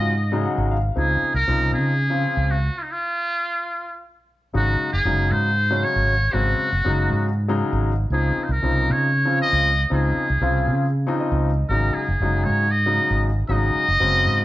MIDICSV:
0, 0, Header, 1, 5, 480
1, 0, Start_track
1, 0, Key_signature, -5, "major"
1, 0, Tempo, 511073
1, 911, Time_signature, 7, 3, 24, 8
1, 13570, End_track
2, 0, Start_track
2, 0, Title_t, "Muted trumpet"
2, 0, Program_c, 0, 59
2, 0, Note_on_c, 0, 75, 106
2, 628, Note_off_c, 0, 75, 0
2, 904, Note_on_c, 0, 68, 83
2, 1242, Note_off_c, 0, 68, 0
2, 1268, Note_on_c, 0, 70, 96
2, 1604, Note_off_c, 0, 70, 0
2, 1632, Note_on_c, 0, 68, 86
2, 2354, Note_on_c, 0, 66, 77
2, 2368, Note_off_c, 0, 68, 0
2, 2612, Note_on_c, 0, 65, 66
2, 2626, Note_off_c, 0, 66, 0
2, 2651, Note_on_c, 0, 63, 57
2, 2665, Note_off_c, 0, 65, 0
2, 2740, Note_on_c, 0, 65, 83
2, 2754, Note_off_c, 0, 63, 0
2, 3800, Note_off_c, 0, 65, 0
2, 4283, Note_on_c, 0, 66, 81
2, 4613, Note_off_c, 0, 66, 0
2, 4626, Note_on_c, 0, 68, 84
2, 4995, Note_on_c, 0, 72, 91
2, 5009, Note_off_c, 0, 68, 0
2, 5481, Note_on_c, 0, 73, 99
2, 5495, Note_off_c, 0, 72, 0
2, 5943, Note_on_c, 0, 66, 85
2, 5957, Note_off_c, 0, 73, 0
2, 6907, Note_off_c, 0, 66, 0
2, 7636, Note_on_c, 0, 68, 76
2, 7924, Note_on_c, 0, 72, 54
2, 7938, Note_off_c, 0, 68, 0
2, 8000, Note_on_c, 0, 70, 82
2, 8015, Note_off_c, 0, 72, 0
2, 8372, Note_on_c, 0, 73, 96
2, 8386, Note_off_c, 0, 70, 0
2, 8841, Note_off_c, 0, 73, 0
2, 8847, Note_on_c, 0, 75, 102
2, 9285, Note_off_c, 0, 75, 0
2, 9338, Note_on_c, 0, 68, 81
2, 10246, Note_off_c, 0, 68, 0
2, 10979, Note_on_c, 0, 70, 74
2, 11214, Note_on_c, 0, 68, 77
2, 11228, Note_off_c, 0, 70, 0
2, 11688, Note_on_c, 0, 73, 78
2, 11702, Note_off_c, 0, 68, 0
2, 11935, Note_on_c, 0, 75, 89
2, 11949, Note_off_c, 0, 73, 0
2, 12422, Note_off_c, 0, 75, 0
2, 12677, Note_on_c, 0, 75, 114
2, 13570, Note_off_c, 0, 75, 0
2, 13570, End_track
3, 0, Start_track
3, 0, Title_t, "Grand piano"
3, 0, Program_c, 1, 0
3, 0, Note_on_c, 1, 49, 64
3, 0, Note_on_c, 1, 54, 58
3, 0, Note_on_c, 1, 56, 57
3, 0, Note_on_c, 1, 65, 74
3, 112, Note_off_c, 1, 49, 0
3, 113, Note_off_c, 1, 54, 0
3, 114, Note_off_c, 1, 56, 0
3, 115, Note_off_c, 1, 65, 0
3, 299, Note_on_c, 1, 49, 76
3, 307, Note_on_c, 1, 54, 74
3, 307, Note_on_c, 1, 56, 72
3, 308, Note_on_c, 1, 63, 78
3, 424, Note_on_c, 1, 78, 59
3, 651, Note_off_c, 1, 78, 0
3, 669, Note_on_c, 1, 77, 60
3, 706, Note_off_c, 1, 49, 0
3, 710, Note_off_c, 1, 54, 0
3, 710, Note_off_c, 1, 56, 0
3, 710, Note_off_c, 1, 63, 0
3, 893, Note_off_c, 1, 77, 0
3, 897, Note_on_c, 1, 49, 60
3, 899, Note_on_c, 1, 60, 52
3, 900, Note_on_c, 1, 53, 50
3, 908, Note_on_c, 1, 63, 61
3, 1225, Note_off_c, 1, 49, 0
3, 1226, Note_off_c, 1, 53, 0
3, 1226, Note_off_c, 1, 60, 0
3, 1230, Note_off_c, 1, 63, 0
3, 1385, Note_on_c, 1, 49, 60
3, 1388, Note_on_c, 1, 53, 57
3, 1388, Note_on_c, 1, 60, 54
3, 1393, Note_on_c, 1, 63, 65
3, 1789, Note_off_c, 1, 49, 0
3, 1791, Note_off_c, 1, 53, 0
3, 1791, Note_off_c, 1, 60, 0
3, 1793, Note_off_c, 1, 63, 0
3, 1972, Note_on_c, 1, 49, 64
3, 1973, Note_on_c, 1, 53, 56
3, 1974, Note_on_c, 1, 65, 69
3, 1979, Note_on_c, 1, 60, 57
3, 2383, Note_off_c, 1, 49, 0
3, 2383, Note_off_c, 1, 53, 0
3, 2384, Note_off_c, 1, 65, 0
3, 2386, Note_off_c, 1, 60, 0
3, 4260, Note_on_c, 1, 49, 59
3, 4265, Note_on_c, 1, 54, 55
3, 4267, Note_on_c, 1, 63, 68
3, 4268, Note_on_c, 1, 56, 50
3, 4587, Note_off_c, 1, 49, 0
3, 4589, Note_off_c, 1, 54, 0
3, 4590, Note_off_c, 1, 63, 0
3, 4591, Note_off_c, 1, 56, 0
3, 4746, Note_on_c, 1, 56, 58
3, 4747, Note_on_c, 1, 54, 57
3, 4748, Note_on_c, 1, 49, 63
3, 4753, Note_on_c, 1, 63, 64
3, 5149, Note_off_c, 1, 56, 0
3, 5150, Note_off_c, 1, 54, 0
3, 5151, Note_off_c, 1, 49, 0
3, 5153, Note_off_c, 1, 63, 0
3, 5358, Note_on_c, 1, 49, 65
3, 5359, Note_on_c, 1, 54, 59
3, 5369, Note_on_c, 1, 56, 62
3, 5372, Note_on_c, 1, 61, 74
3, 5755, Note_off_c, 1, 49, 0
3, 5756, Note_off_c, 1, 54, 0
3, 5761, Note_off_c, 1, 56, 0
3, 5762, Note_off_c, 1, 61, 0
3, 5946, Note_on_c, 1, 49, 65
3, 5946, Note_on_c, 1, 54, 55
3, 5953, Note_on_c, 1, 56, 57
3, 5956, Note_on_c, 1, 60, 74
3, 6269, Note_off_c, 1, 49, 0
3, 6269, Note_off_c, 1, 54, 0
3, 6273, Note_off_c, 1, 56, 0
3, 6274, Note_off_c, 1, 60, 0
3, 6429, Note_on_c, 1, 49, 69
3, 6434, Note_on_c, 1, 54, 67
3, 6435, Note_on_c, 1, 56, 60
3, 6439, Note_on_c, 1, 63, 77
3, 6831, Note_off_c, 1, 49, 0
3, 6833, Note_off_c, 1, 54, 0
3, 6834, Note_off_c, 1, 56, 0
3, 6836, Note_off_c, 1, 63, 0
3, 7028, Note_on_c, 1, 54, 74
3, 7031, Note_on_c, 1, 56, 77
3, 7032, Note_on_c, 1, 49, 82
3, 7039, Note_on_c, 1, 63, 92
3, 7430, Note_off_c, 1, 54, 0
3, 7431, Note_off_c, 1, 56, 0
3, 7432, Note_off_c, 1, 49, 0
3, 7435, Note_off_c, 1, 63, 0
3, 7629, Note_on_c, 1, 49, 59
3, 7630, Note_on_c, 1, 53, 58
3, 7635, Note_on_c, 1, 63, 67
3, 7636, Note_on_c, 1, 60, 56
3, 7950, Note_off_c, 1, 49, 0
3, 7951, Note_off_c, 1, 53, 0
3, 7953, Note_off_c, 1, 63, 0
3, 7954, Note_off_c, 1, 60, 0
3, 8101, Note_on_c, 1, 53, 57
3, 8102, Note_on_c, 1, 49, 68
3, 8110, Note_on_c, 1, 60, 57
3, 8115, Note_on_c, 1, 63, 65
3, 8506, Note_off_c, 1, 49, 0
3, 8506, Note_off_c, 1, 53, 0
3, 8511, Note_off_c, 1, 60, 0
3, 8513, Note_off_c, 1, 63, 0
3, 8690, Note_on_c, 1, 49, 72
3, 8693, Note_on_c, 1, 53, 66
3, 8699, Note_on_c, 1, 60, 60
3, 8705, Note_on_c, 1, 65, 68
3, 9100, Note_off_c, 1, 49, 0
3, 9102, Note_off_c, 1, 53, 0
3, 9105, Note_off_c, 1, 60, 0
3, 9108, Note_off_c, 1, 65, 0
3, 9298, Note_on_c, 1, 49, 66
3, 9309, Note_on_c, 1, 53, 58
3, 9309, Note_on_c, 1, 60, 63
3, 9309, Note_on_c, 1, 63, 78
3, 9624, Note_off_c, 1, 49, 0
3, 9630, Note_off_c, 1, 53, 0
3, 9630, Note_off_c, 1, 60, 0
3, 9630, Note_off_c, 1, 63, 0
3, 9781, Note_on_c, 1, 49, 71
3, 9784, Note_on_c, 1, 53, 64
3, 9785, Note_on_c, 1, 60, 62
3, 9792, Note_on_c, 1, 65, 76
3, 10186, Note_off_c, 1, 49, 0
3, 10187, Note_off_c, 1, 53, 0
3, 10188, Note_off_c, 1, 60, 0
3, 10191, Note_off_c, 1, 65, 0
3, 10394, Note_on_c, 1, 49, 81
3, 10396, Note_on_c, 1, 53, 75
3, 10396, Note_on_c, 1, 60, 77
3, 10408, Note_on_c, 1, 63, 88
3, 10521, Note_on_c, 1, 75, 65
3, 10792, Note_off_c, 1, 49, 0
3, 10793, Note_off_c, 1, 53, 0
3, 10793, Note_off_c, 1, 60, 0
3, 10799, Note_off_c, 1, 63, 0
3, 10962, Note_off_c, 1, 75, 0
3, 10994, Note_on_c, 1, 49, 62
3, 10994, Note_on_c, 1, 54, 55
3, 10999, Note_on_c, 1, 56, 55
3, 11003, Note_on_c, 1, 63, 63
3, 11312, Note_off_c, 1, 49, 0
3, 11312, Note_off_c, 1, 54, 0
3, 11315, Note_off_c, 1, 56, 0
3, 11317, Note_off_c, 1, 63, 0
3, 11474, Note_on_c, 1, 49, 62
3, 11476, Note_on_c, 1, 54, 56
3, 11480, Note_on_c, 1, 56, 60
3, 11483, Note_on_c, 1, 63, 69
3, 11872, Note_off_c, 1, 49, 0
3, 11873, Note_off_c, 1, 54, 0
3, 11875, Note_off_c, 1, 56, 0
3, 11877, Note_off_c, 1, 63, 0
3, 12079, Note_on_c, 1, 49, 64
3, 12080, Note_on_c, 1, 54, 63
3, 12081, Note_on_c, 1, 63, 73
3, 12082, Note_on_c, 1, 56, 59
3, 12475, Note_off_c, 1, 49, 0
3, 12475, Note_off_c, 1, 54, 0
3, 12476, Note_off_c, 1, 56, 0
3, 12476, Note_off_c, 1, 63, 0
3, 12665, Note_on_c, 1, 49, 65
3, 12673, Note_on_c, 1, 54, 62
3, 12681, Note_on_c, 1, 56, 62
3, 12681, Note_on_c, 1, 63, 74
3, 12988, Note_off_c, 1, 49, 0
3, 12992, Note_off_c, 1, 54, 0
3, 12996, Note_off_c, 1, 56, 0
3, 12996, Note_off_c, 1, 63, 0
3, 13149, Note_on_c, 1, 49, 69
3, 13152, Note_on_c, 1, 54, 65
3, 13156, Note_on_c, 1, 56, 62
3, 13157, Note_on_c, 1, 60, 81
3, 13550, Note_off_c, 1, 49, 0
3, 13552, Note_off_c, 1, 54, 0
3, 13553, Note_off_c, 1, 56, 0
3, 13554, Note_off_c, 1, 60, 0
3, 13570, End_track
4, 0, Start_track
4, 0, Title_t, "Fretless electric bass"
4, 0, Program_c, 2, 35
4, 0, Note_on_c, 2, 44, 79
4, 434, Note_off_c, 2, 44, 0
4, 544, Note_on_c, 2, 32, 88
4, 840, Note_off_c, 2, 32, 0
4, 907, Note_on_c, 2, 37, 88
4, 1104, Note_off_c, 2, 37, 0
4, 1262, Note_on_c, 2, 36, 71
4, 1363, Note_off_c, 2, 36, 0
4, 1390, Note_on_c, 2, 36, 75
4, 1622, Note_on_c, 2, 49, 78
4, 1636, Note_off_c, 2, 36, 0
4, 2113, Note_off_c, 2, 49, 0
4, 2227, Note_on_c, 2, 37, 83
4, 2521, Note_off_c, 2, 37, 0
4, 4272, Note_on_c, 2, 32, 95
4, 4467, Note_off_c, 2, 32, 0
4, 4634, Note_on_c, 2, 30, 72
4, 4731, Note_off_c, 2, 30, 0
4, 4744, Note_on_c, 2, 30, 78
4, 4988, Note_on_c, 2, 44, 80
4, 5002, Note_off_c, 2, 30, 0
4, 5477, Note_off_c, 2, 44, 0
4, 5598, Note_on_c, 2, 32, 93
4, 5888, Note_off_c, 2, 32, 0
4, 5954, Note_on_c, 2, 32, 86
4, 6148, Note_off_c, 2, 32, 0
4, 6316, Note_on_c, 2, 30, 71
4, 6412, Note_off_c, 2, 30, 0
4, 6443, Note_on_c, 2, 30, 73
4, 6665, Note_on_c, 2, 44, 81
4, 6679, Note_off_c, 2, 30, 0
4, 7155, Note_off_c, 2, 44, 0
4, 7259, Note_on_c, 2, 32, 97
4, 7556, Note_off_c, 2, 32, 0
4, 7611, Note_on_c, 2, 37, 86
4, 7814, Note_off_c, 2, 37, 0
4, 7974, Note_on_c, 2, 36, 78
4, 8078, Note_off_c, 2, 36, 0
4, 8109, Note_on_c, 2, 36, 75
4, 8352, Note_on_c, 2, 49, 88
4, 8366, Note_off_c, 2, 36, 0
4, 8838, Note_off_c, 2, 49, 0
4, 8948, Note_on_c, 2, 37, 90
4, 9241, Note_off_c, 2, 37, 0
4, 9313, Note_on_c, 2, 37, 95
4, 9506, Note_off_c, 2, 37, 0
4, 9673, Note_on_c, 2, 36, 77
4, 9769, Note_off_c, 2, 36, 0
4, 9781, Note_on_c, 2, 36, 77
4, 10024, Note_on_c, 2, 49, 84
4, 10038, Note_off_c, 2, 36, 0
4, 10513, Note_off_c, 2, 49, 0
4, 10629, Note_on_c, 2, 37, 85
4, 10921, Note_off_c, 2, 37, 0
4, 10982, Note_on_c, 2, 32, 92
4, 11180, Note_off_c, 2, 32, 0
4, 11349, Note_on_c, 2, 30, 70
4, 11447, Note_off_c, 2, 30, 0
4, 11462, Note_on_c, 2, 30, 75
4, 11705, Note_on_c, 2, 44, 88
4, 11719, Note_off_c, 2, 30, 0
4, 12194, Note_off_c, 2, 44, 0
4, 12308, Note_on_c, 2, 32, 89
4, 12601, Note_off_c, 2, 32, 0
4, 12671, Note_on_c, 2, 32, 90
4, 12865, Note_off_c, 2, 32, 0
4, 13039, Note_on_c, 2, 30, 75
4, 13132, Note_off_c, 2, 30, 0
4, 13156, Note_on_c, 2, 30, 78
4, 13395, Note_on_c, 2, 44, 87
4, 13409, Note_off_c, 2, 30, 0
4, 13570, Note_off_c, 2, 44, 0
4, 13570, End_track
5, 0, Start_track
5, 0, Title_t, "Muted fretless electric bass strokes"
5, 1152, Note_on_c, 9, 29, 31
5, 1246, Note_off_c, 9, 29, 0
5, 7865, Note_on_c, 9, 29, 30
5, 7959, Note_off_c, 9, 29, 0
5, 12918, Note_on_c, 9, 29, 33
5, 13012, Note_off_c, 9, 29, 0
5, 13570, End_track
0, 0, End_of_file